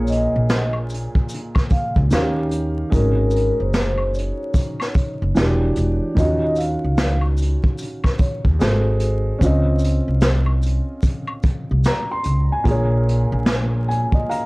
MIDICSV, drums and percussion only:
0, 0, Header, 1, 2, 480
1, 0, Start_track
1, 0, Key_signature, -5, "major"
1, 0, Tempo, 810811
1, 1729, Time_signature, 4, 2, 24, 8
1, 8559, End_track
2, 0, Start_track
2, 0, Title_t, "Drums"
2, 44, Note_on_c, 9, 82, 42
2, 68, Note_on_c, 9, 42, 66
2, 103, Note_off_c, 9, 82, 0
2, 128, Note_off_c, 9, 42, 0
2, 293, Note_on_c, 9, 82, 58
2, 294, Note_on_c, 9, 38, 114
2, 311, Note_on_c, 9, 42, 69
2, 352, Note_off_c, 9, 82, 0
2, 353, Note_off_c, 9, 38, 0
2, 370, Note_off_c, 9, 42, 0
2, 433, Note_on_c, 9, 76, 56
2, 492, Note_off_c, 9, 76, 0
2, 530, Note_on_c, 9, 82, 48
2, 556, Note_on_c, 9, 42, 60
2, 590, Note_off_c, 9, 82, 0
2, 615, Note_off_c, 9, 42, 0
2, 682, Note_on_c, 9, 36, 77
2, 741, Note_off_c, 9, 36, 0
2, 765, Note_on_c, 9, 82, 68
2, 793, Note_on_c, 9, 42, 78
2, 824, Note_off_c, 9, 82, 0
2, 852, Note_off_c, 9, 42, 0
2, 917, Note_on_c, 9, 76, 74
2, 922, Note_on_c, 9, 36, 91
2, 929, Note_on_c, 9, 38, 32
2, 976, Note_off_c, 9, 76, 0
2, 981, Note_off_c, 9, 36, 0
2, 988, Note_off_c, 9, 38, 0
2, 1006, Note_on_c, 9, 82, 46
2, 1011, Note_on_c, 9, 36, 87
2, 1025, Note_on_c, 9, 42, 67
2, 1065, Note_off_c, 9, 82, 0
2, 1070, Note_off_c, 9, 36, 0
2, 1085, Note_off_c, 9, 42, 0
2, 1160, Note_on_c, 9, 36, 79
2, 1220, Note_off_c, 9, 36, 0
2, 1249, Note_on_c, 9, 82, 79
2, 1258, Note_on_c, 9, 42, 74
2, 1259, Note_on_c, 9, 38, 117
2, 1308, Note_off_c, 9, 82, 0
2, 1317, Note_off_c, 9, 42, 0
2, 1318, Note_off_c, 9, 38, 0
2, 1486, Note_on_c, 9, 42, 73
2, 1490, Note_on_c, 9, 82, 41
2, 1545, Note_off_c, 9, 42, 0
2, 1550, Note_off_c, 9, 82, 0
2, 1731, Note_on_c, 9, 36, 97
2, 1734, Note_on_c, 9, 82, 62
2, 1738, Note_on_c, 9, 42, 71
2, 1790, Note_off_c, 9, 36, 0
2, 1793, Note_off_c, 9, 82, 0
2, 1797, Note_off_c, 9, 42, 0
2, 1957, Note_on_c, 9, 82, 44
2, 1990, Note_on_c, 9, 42, 65
2, 2016, Note_off_c, 9, 82, 0
2, 2049, Note_off_c, 9, 42, 0
2, 2213, Note_on_c, 9, 38, 117
2, 2214, Note_on_c, 9, 82, 58
2, 2230, Note_on_c, 9, 42, 67
2, 2272, Note_off_c, 9, 38, 0
2, 2273, Note_off_c, 9, 82, 0
2, 2290, Note_off_c, 9, 42, 0
2, 2353, Note_on_c, 9, 76, 54
2, 2413, Note_off_c, 9, 76, 0
2, 2453, Note_on_c, 9, 82, 48
2, 2476, Note_on_c, 9, 42, 60
2, 2512, Note_off_c, 9, 82, 0
2, 2535, Note_off_c, 9, 42, 0
2, 2689, Note_on_c, 9, 36, 92
2, 2691, Note_on_c, 9, 82, 67
2, 2713, Note_on_c, 9, 42, 77
2, 2748, Note_off_c, 9, 36, 0
2, 2750, Note_off_c, 9, 82, 0
2, 2773, Note_off_c, 9, 42, 0
2, 2841, Note_on_c, 9, 76, 74
2, 2849, Note_on_c, 9, 38, 31
2, 2900, Note_off_c, 9, 76, 0
2, 2908, Note_off_c, 9, 38, 0
2, 2925, Note_on_c, 9, 82, 45
2, 2932, Note_on_c, 9, 36, 90
2, 2943, Note_on_c, 9, 42, 66
2, 2984, Note_off_c, 9, 82, 0
2, 2991, Note_off_c, 9, 36, 0
2, 3002, Note_off_c, 9, 42, 0
2, 3173, Note_on_c, 9, 82, 79
2, 3178, Note_on_c, 9, 42, 75
2, 3179, Note_on_c, 9, 38, 117
2, 3232, Note_off_c, 9, 82, 0
2, 3237, Note_off_c, 9, 42, 0
2, 3238, Note_off_c, 9, 38, 0
2, 3407, Note_on_c, 9, 42, 69
2, 3413, Note_on_c, 9, 82, 42
2, 3466, Note_off_c, 9, 42, 0
2, 3472, Note_off_c, 9, 82, 0
2, 3652, Note_on_c, 9, 36, 98
2, 3657, Note_on_c, 9, 82, 63
2, 3659, Note_on_c, 9, 42, 71
2, 3711, Note_off_c, 9, 36, 0
2, 3716, Note_off_c, 9, 82, 0
2, 3718, Note_off_c, 9, 42, 0
2, 3882, Note_on_c, 9, 82, 41
2, 3907, Note_on_c, 9, 42, 67
2, 3941, Note_off_c, 9, 82, 0
2, 3967, Note_off_c, 9, 42, 0
2, 4131, Note_on_c, 9, 38, 115
2, 4132, Note_on_c, 9, 82, 59
2, 4148, Note_on_c, 9, 42, 69
2, 4190, Note_off_c, 9, 38, 0
2, 4191, Note_off_c, 9, 82, 0
2, 4207, Note_off_c, 9, 42, 0
2, 4270, Note_on_c, 9, 76, 53
2, 4329, Note_off_c, 9, 76, 0
2, 4365, Note_on_c, 9, 82, 46
2, 4391, Note_on_c, 9, 42, 60
2, 4424, Note_off_c, 9, 82, 0
2, 4450, Note_off_c, 9, 42, 0
2, 4521, Note_on_c, 9, 36, 77
2, 4580, Note_off_c, 9, 36, 0
2, 4607, Note_on_c, 9, 82, 69
2, 4629, Note_on_c, 9, 42, 74
2, 4666, Note_off_c, 9, 82, 0
2, 4689, Note_off_c, 9, 42, 0
2, 4758, Note_on_c, 9, 76, 76
2, 4762, Note_on_c, 9, 36, 85
2, 4767, Note_on_c, 9, 38, 33
2, 4817, Note_off_c, 9, 76, 0
2, 4821, Note_off_c, 9, 36, 0
2, 4826, Note_off_c, 9, 38, 0
2, 4846, Note_on_c, 9, 82, 46
2, 4851, Note_on_c, 9, 36, 93
2, 4863, Note_on_c, 9, 42, 67
2, 4905, Note_off_c, 9, 82, 0
2, 4910, Note_off_c, 9, 36, 0
2, 4922, Note_off_c, 9, 42, 0
2, 5001, Note_on_c, 9, 36, 75
2, 5060, Note_off_c, 9, 36, 0
2, 5096, Note_on_c, 9, 82, 77
2, 5099, Note_on_c, 9, 42, 80
2, 5100, Note_on_c, 9, 38, 115
2, 5155, Note_off_c, 9, 82, 0
2, 5159, Note_off_c, 9, 38, 0
2, 5159, Note_off_c, 9, 42, 0
2, 5326, Note_on_c, 9, 42, 74
2, 5333, Note_on_c, 9, 82, 44
2, 5385, Note_off_c, 9, 42, 0
2, 5392, Note_off_c, 9, 82, 0
2, 5571, Note_on_c, 9, 36, 93
2, 5575, Note_on_c, 9, 82, 62
2, 5577, Note_on_c, 9, 42, 67
2, 5630, Note_off_c, 9, 36, 0
2, 5634, Note_off_c, 9, 82, 0
2, 5636, Note_off_c, 9, 42, 0
2, 5796, Note_on_c, 9, 82, 42
2, 5826, Note_on_c, 9, 42, 64
2, 5855, Note_off_c, 9, 82, 0
2, 5885, Note_off_c, 9, 42, 0
2, 6047, Note_on_c, 9, 82, 62
2, 6050, Note_on_c, 9, 38, 117
2, 6067, Note_on_c, 9, 42, 68
2, 6107, Note_off_c, 9, 82, 0
2, 6109, Note_off_c, 9, 38, 0
2, 6126, Note_off_c, 9, 42, 0
2, 6193, Note_on_c, 9, 76, 53
2, 6252, Note_off_c, 9, 76, 0
2, 6290, Note_on_c, 9, 82, 51
2, 6310, Note_on_c, 9, 42, 58
2, 6349, Note_off_c, 9, 82, 0
2, 6369, Note_off_c, 9, 42, 0
2, 6528, Note_on_c, 9, 82, 69
2, 6529, Note_on_c, 9, 36, 88
2, 6551, Note_on_c, 9, 42, 75
2, 6587, Note_off_c, 9, 82, 0
2, 6588, Note_off_c, 9, 36, 0
2, 6611, Note_off_c, 9, 42, 0
2, 6674, Note_on_c, 9, 76, 77
2, 6733, Note_off_c, 9, 76, 0
2, 6766, Note_on_c, 9, 82, 48
2, 6771, Note_on_c, 9, 36, 90
2, 6781, Note_on_c, 9, 42, 67
2, 6825, Note_off_c, 9, 82, 0
2, 6830, Note_off_c, 9, 36, 0
2, 6840, Note_off_c, 9, 42, 0
2, 7010, Note_on_c, 9, 82, 80
2, 7019, Note_on_c, 9, 42, 78
2, 7020, Note_on_c, 9, 38, 115
2, 7070, Note_off_c, 9, 82, 0
2, 7078, Note_off_c, 9, 42, 0
2, 7079, Note_off_c, 9, 38, 0
2, 7244, Note_on_c, 9, 42, 72
2, 7253, Note_on_c, 9, 82, 40
2, 7303, Note_off_c, 9, 42, 0
2, 7312, Note_off_c, 9, 82, 0
2, 7491, Note_on_c, 9, 36, 99
2, 7496, Note_on_c, 9, 42, 76
2, 7550, Note_off_c, 9, 36, 0
2, 7555, Note_off_c, 9, 42, 0
2, 7747, Note_on_c, 9, 42, 68
2, 7806, Note_off_c, 9, 42, 0
2, 7970, Note_on_c, 9, 38, 114
2, 7987, Note_on_c, 9, 42, 72
2, 8029, Note_off_c, 9, 38, 0
2, 8046, Note_off_c, 9, 42, 0
2, 8234, Note_on_c, 9, 42, 57
2, 8293, Note_off_c, 9, 42, 0
2, 8361, Note_on_c, 9, 36, 83
2, 8420, Note_off_c, 9, 36, 0
2, 8470, Note_on_c, 9, 42, 80
2, 8529, Note_off_c, 9, 42, 0
2, 8559, End_track
0, 0, End_of_file